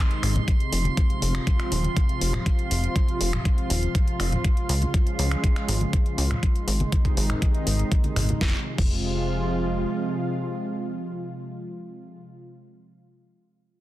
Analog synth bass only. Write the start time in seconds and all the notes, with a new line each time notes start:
0.23 G#1
0.72 F1
1.22 F1
1.72 D#1
2.21 F1
2.71 F1
3.21 F1
3.70 D#1
4.20 F1
4.69 C#2
5.19 C#2
5.68 G#1
6.18 C#2
6.67 G#1
7.17 G#1
7.67 G#1
8.16 G#1
8.41 F1
8.78 F1